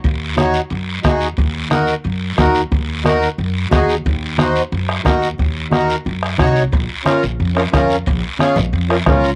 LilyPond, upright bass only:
\new Staff \with { instrumentName = "Upright bass" } { \clef bass \time 4/4 \key ees \dorian \tempo 4 = 179 ees,2 ges,4 ees,4 | ees,2 ges,4 ees,4 | ees,2 ges,4 ees,4 | ees,2 ges,4 ees,4 |
ees,2 ges,4 c,4 | bes,,8 r4 bes,,8 f,4 f,4 | bes,,8 r4 bes,,8 f,4 des,4 | }